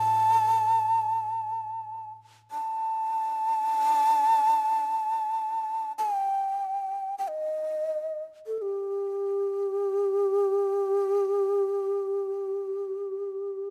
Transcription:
Already playing: koto A2, shakuhachi A5
2.51 shakuhachi A5
5.98 shakuhachi G#5
6.15 shakuhachi G5
7.18 shakuhachi G5
7.29 shakuhachi D#5
8.47 shakuhachi A4
8.58 shakuhachi G4 A4

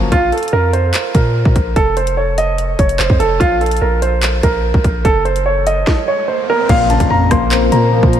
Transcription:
Already playing: 808-style bass F#1, grand piano F#2 C#3 F3 F#3 A#3
0.12 808-style bass A#1, grand piano F4, kick, closed hi-hat
0.32 grand piano A4, closed hi-hat
0.38 closed hi-hat
0.43 closed hi-hat
0.48 closed hi-hat
0.53 808-style bass F2, grand piano A#4
0.73 grand piano C5, closed hi-hat
0.94 clap, closed hi-hat
1.14 808-style bass A#2, grand piano A#4, kick, closed hi-hat
1.45 808-style bass A#2, kick
1.56 808-style bass A#1, kick, closed hi-hat
1.76 808-style bass F1, grand piano A4, kick, closed hi-hat
1.97 grand piano C5, closed hi-hat
2.07 closed hi-hat
2.17 grand piano C#5
2.38 grand piano D#5, closed hi-hat
2.58 closed hi-hat
2.79 808-style bass F1, grand piano C#5, kick, closed hi-hat
2.89 closed hi-hat
2.99 808-style bass F1, grand piano C5, clap
3.10 808-style bass F2, kick
3.20 808-style bass F1, grand piano A4, closed hi-hat
3.40 808-style bass A#1, grand piano F4, kick, closed hi-hat
3.61 grand piano A4, closed hi-hat
3.66 closed hi-hat
3.71 closed hi-hat
3.77 closed hi-hat
3.82 808-style bass A#1, grand piano A#4
4.02 grand piano C5, closed hi-hat
4.23 clap, closed hi-hat
4.43 808-style bass A#1, grand piano A#4, kick, closed hi-hat
4.74 808-style bass A#1, kick
4.84 808-style bass A#1, kick, closed hi-hat
5.05 808-style bass F#1, grand piano A4, kick, closed hi-hat, riser
5.25 grand piano C5, closed hi-hat
5.36 closed hi-hat
5.46 grand piano C#5
5.67 grand piano D#5, closed hi-hat
5.87 kick, snare
6.08 grand piano C#5
6.28 grand piano C5
6.50 grand piano A#4
6.69 808-style bass A#1, grand piano A#2 F5, ambient pad A#3 F4 A#4 C5, kick, closed hi-hat, crash, impact
6.90 grand piano C#3 A5, closed hi-hat
7.00 808-style bass A#1, kick, closed hi-hat
7.10 808-style bass F2, grand piano A#5
7.31 808-style bass A#1, grand piano A#3 C6, kick, cross-stick, closed hi-hat
7.51 grand piano C4, clap, closed hi-hat
7.72 808-style bass A#2, grand piano A#3 A#5, closed hi-hat
7.92 grand piano F3
8.03 808-style bass A#2, kick
8.13 closed hi-hat

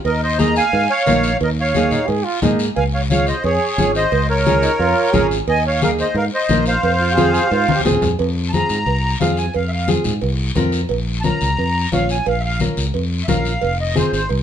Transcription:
0.05 fingered electric bass D#2, accordion A#4 D#5, cowbell, high conga, long guiro
0.23 accordion C5 D#5
0.38 nylon-string guitar A#3 D#4 G#4, accordion D#5 A#5, high conga, short guiro
0.56 accordion F5 G#5, short guiro
0.73 fingered electric bass G#2, cowbell, high conga, long guiro
0.90 accordion C#5 F5
1.06 fingered electric bass A#1, nylon-string guitar A#3 D#4 A#4, high conga, low timbale, short guiro
1.23 short guiro
1.40 fingered electric bass D#2, accordion A#4 D#5, cowbell, high conga, long guiro
1.60 accordion C#5 F5
1.74 nylon-string guitar A#3 D#4 G#4, high conga, short guiro
1.90 trombone D#4, low conga, short guiro
2.07 fingered electric bass G#2, trombone G#4, cowbell, high conga, long guiro
2.24 trombone F4
2.42 fingered electric bass G#2, nylon-string guitar A#3 D#4 G#4, trombone D#4, high conga, low conga, low timbale, short guiro
2.59 short guiro
2.76 fingered electric bass C#2, accordion F5 G#5, cowbell, high conga, long guiro
2.94 accordion C#5 F5
3.10 nylon-string guitar C#4 F4 G#4, accordion C#5 F5, high conga, short guiro
3.27 accordion C5 D#5, short guiro
3.44 fingered electric bass F2, accordion G#4 C#5, cowbell, high conga, long guiro
3.78 fingered electric bass G#1, nylon-string guitar C#4 F4 G#4, high conga, short guiro
3.95 accordion C5 D#5, short guiro
4.12 fingered electric bass C#2, cowbell, high conga, long guiro
4.30 accordion A#4 C#5
4.46 nylon-string guitar C#4 F4 G#4, high conga, short guiro
4.62 trombone D#4, short guiro
4.79 fingered electric bass F2, trombone F4, cowbell, high conga, long guiro
5.13 fingered electric bass G#1, nylon-string guitar C#4 F4 G#4, trombone G#4, high conga, low conga, short guiro
5.31 short guiro
5.47 fingered electric bass D#2, accordion D#5 G#5, cowbell, high conga, long guiro
5.67 accordion C#5 F5
5.82 nylon-string guitar A#3 D#4 G#4, accordion A#4 F5, high conga, short guiro
5.99 accordion C5 D#5, short guiro
6.15 fingered electric bass G#2, accordion A#4 F5, cowbell, high conga, long guiro
6.34 accordion C5 D#5
6.49 fingered electric bass A#1, nylon-string guitar A#3 D#4 A#4, high conga, low timbale, short guiro
6.66 accordion C5 F5, short guiro
6.83 fingered electric bass F2, cowbell, high conga, long guiro
7.00 trombone F4
7.15 nylon-string guitar C4 F4 G#4, trombone G#4, high conga, short guiro
7.33 trombone G#4, short guiro
7.50 fingered electric bass G#2, trombone F4, cowbell, high conga, long guiro
7.68 high conga, high timbale
7.75 trombone G4
7.80 trombone G#4, high conga
7.85 fingered electric bass D#2, nylon-string guitar C4 F4 G#4, low timbale, short guiro
7.91 low conga
8.02 fingered electric bass F2, low conga, low timbale, short guiro
8.19 fingered electric bass F2, cowbell, high conga, long guiro
8.49 accordion A5
8.53 nylon-string guitar C4 F4 G#4, accordion A#5, high conga, short guiro
8.69 fingered electric bass G#2, short guiro
8.86 fingered electric bass C2, cowbell, high conga, long guiro
9.20 fingered electric bass F2, nylon-string guitar C4 F4 G#4, accordion F5, high conga, low timbale, short guiro
9.37 accordion G#5, short guiro
9.54 fingered electric bass F2, accordion F5, cowbell, high conga, long guiro
9.69 accordion E5
9.73 accordion F5
9.88 nylon-string guitar C4 F4 G#4, high conga, short guiro
10.04 fingered electric bass G#2, low conga, short guiro
10.21 fingered electric bass C2, cowbell, high conga, long guiro
10.55 fingered electric bass F2, nylon-string guitar C4 F4 A#4, high conga, low conga, low timbale, short guiro
10.72 short guiro
10.89 fingered electric bass A#1, cowbell, high conga, long guiro
11.20 nylon-string guitar C#4, accordion A5, high conga, short guiro
11.25 nylon-string guitar F4 A#4, accordion A#5
11.41 fingered electric bass C#2, short guiro
11.57 fingered electric bass F2, cowbell, high conga, long guiro
11.92 fingered electric bass A#1, nylon-string guitar C#4 F4 C#5, accordion F5, high conga, short guiro
12.09 accordion G#5, short guiro
12.26 fingered electric bass A#1, accordion F5, cowbell, high conga, long guiro
12.40 accordion E5
12.44 accordion F5
12.60 nylon-string guitar C#4 F4 A#4, high conga, short guiro
12.77 fingered electric bass C#2, short guiro
12.94 fingered electric bass F2, cowbell, high conga, long guiro
13.24 nylon-string guitar C#4, accordion E5, low timbale
13.28 fingered electric bass A#1, nylon-string guitar F4 A#4, accordion F5, high conga, low conga, short guiro
13.45 short guiro
13.62 fingered electric bass F1, cowbell, high conga, long guiro
13.81 accordion D#5
13.95 nylon-string guitar C4 F4 G#4, accordion C5, high conga, short guiro
14.13 fingered electric bass G#1, accordion C5, short guiro
14.29 fingered electric bass C2, cowbell, high conga, long guiro

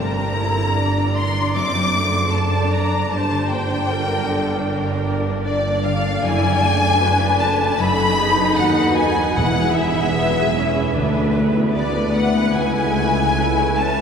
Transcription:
Already playing: double bass section G1, cello section G2, harp G2, viola section D4 A#4, violin section A#5
0.00 violin section A#5
0.17 harp D3
0.35 harp A#3, viola section E4
0.57 harp D4
0.76 viola section D4 D5, harp A#4
0.96 harp D4
1.15 harp D5, violin section C6
1.36 harp A#5
1.55 double bass section F#1, cello section F#2, harp F#2, viola section C4, violin section D6
1.75 harp F#3
1.94 viola section A3, harp C4
2.14 harp D4
2.34 viola section D4 D5, harp A4, violin section A5
2.53 harp C5
2.73 harp D5, violin section A#5
2.92 harp A5
3.11 double bass section G1, harp G2, cello section G2, viola section D4 C5, violin section A5
3.30 harp D3
3.49 harp A#3, violin section G5
3.68 harp D4
3.88 harp F4, viola section A#4
4.07 harp A#4
4.27 viola section A4, harp D5
4.47 harp F5
4.66 viola section A#4, harp D5
4.87 harp F5
5.07 harp D5
5.26 harp A#4
5.45 harp D4, violin section D5, viola section D5
5.65 harp A#3
5.85 harp D3, violin section F5
6.05 harp A#3
6.23 double bass section F#1, harp F#2, cello section F#2, viola section E4, violin section G#5
6.28 violin section G#5
6.43 harp F#3
6.62 harp A3, viola section D4
6.81 harp D4
7.00 harp F#4, viola section B4
7.21 harp A4
7.40 harp D5, violin section A5
7.60 harp F#5
7.78 double bass section F#1, cello section F#2, harp F#2, viola section D#4 A4, violin section B5
7.99 harp F#3
8.18 harp B3, viola section G#4
8.39 harp D#4
8.57 double bass section D#2, cello section D#2, viola section F#4, harp A4, violin section F#5
8.79 harp B4
8.96 harp D#5, violin section G#5
9.36 double bass section E1, timpani E2, cello section E2, harp E3, viola section E4 G#4, violin section F#5
9.57 harp B3
9.75 harp E4, violin section E5
9.96 harp G#4
10.15 viola section B3, harp B4
10.36 harp E5
10.55 viola section C#4, harp G#5
10.76 harp B5
10.95 double bass section D2, cello section D2, harp D3, viola section D4 B4
11.16 harp G#3
11.36 harp B3, viola section B3
11.56 harp E4
11.75 harp G#4, viola section B4, violin section D5
11.97 harp B4
12.15 harp E5, violin section F#5
12.36 harp G#5
12.56 double bass section C#2, cello section C#2, harp C#3, viola section E4, violin section G#5
12.76 harp A3
12.96 harp C#4
13.17 harp E4
13.37 viola section E4, harp A4
13.58 harp C#5
13.78 viola section C#4, harp E5, violin section A5

